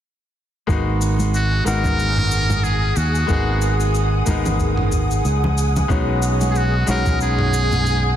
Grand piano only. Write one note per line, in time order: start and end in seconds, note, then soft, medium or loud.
0.67 1.62 G#3 medium
0.67 1.63 A#3 medium
0.67 1.63 B3 medium
0.67 1.63 D#4 medium
0.67 1.64 F#4 medium
1.64 3.25 G#3 medium
1.64 3.26 A#3 medium
1.64 3.26 B3 medium
1.64 3.27 D#4 medium
1.64 3.27 F#4 medium
3.27 4.23 G#3 medium
3.27 4.23 A#3 medium
3.27 4.24 B3 medium
3.27 4.24 D#4 medium
3.27 4.24 G#4 medium
4.26 5.86 G#3 medium
4.26 5.87 A#3 medium
4.26 5.87 B3 medium
4.26 5.87 D#4 medium
4.26 5.88 A#4 medium
5.88 6.84 G#3 medium
5.88 6.84 B3 medium
5.88 6.85 C#4 medium
5.88 6.85 D#4 medium
5.88 6.85 F#4 medium
6.86 8.16 G#3 medium
6.86 8.16 B3 medium
6.86 8.16 C#4 medium
6.86 8.16 D#4 medium
6.86 8.16 F#4 medium